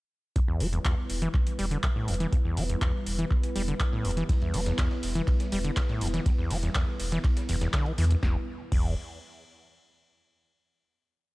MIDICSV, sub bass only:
0, 0, Header, 1, 2, 480
1, 0, Start_track
1, 0, Key_signature, 1, "minor"
1, 0, Tempo, 491803
1, 350, Time_signature, 4, 2, 24, 8
1, 11077, End_track
2, 0, Start_track
2, 0, Title_t, "Sub bass"
2, 0, Program_c, 0, 38
2, 590, Note_on_c, 0, 28, 98
2, 760, Note_off_c, 0, 28, 0
2, 1070, Note_on_c, 0, 28, 77
2, 1240, Note_off_c, 0, 28, 0
2, 1550, Note_on_c, 0, 28, 95
2, 1720, Note_off_c, 0, 28, 0
2, 2030, Note_on_c, 0, 28, 95
2, 2200, Note_off_c, 0, 28, 0
2, 2509, Note_on_c, 0, 28, 98
2, 2679, Note_off_c, 0, 28, 0
2, 2989, Note_on_c, 0, 28, 77
2, 3159, Note_off_c, 0, 28, 0
2, 3469, Note_on_c, 0, 28, 99
2, 3639, Note_off_c, 0, 28, 0
2, 3948, Note_on_c, 0, 28, 94
2, 4119, Note_off_c, 0, 28, 0
2, 4430, Note_on_c, 0, 28, 102
2, 4600, Note_off_c, 0, 28, 0
2, 4910, Note_on_c, 0, 28, 78
2, 5080, Note_off_c, 0, 28, 0
2, 5390, Note_on_c, 0, 28, 100
2, 5560, Note_off_c, 0, 28, 0
2, 5870, Note_on_c, 0, 28, 94
2, 6040, Note_off_c, 0, 28, 0
2, 6349, Note_on_c, 0, 28, 101
2, 6519, Note_off_c, 0, 28, 0
2, 6830, Note_on_c, 0, 28, 78
2, 7000, Note_off_c, 0, 28, 0
2, 7310, Note_on_c, 0, 28, 96
2, 7480, Note_off_c, 0, 28, 0
2, 7789, Note_on_c, 0, 40, 98
2, 7959, Note_off_c, 0, 40, 0
2, 8030, Note_on_c, 0, 28, 97
2, 8165, Note_off_c, 0, 28, 0
2, 8510, Note_on_c, 0, 28, 97
2, 8733, Note_off_c, 0, 28, 0
2, 11077, End_track
0, 0, End_of_file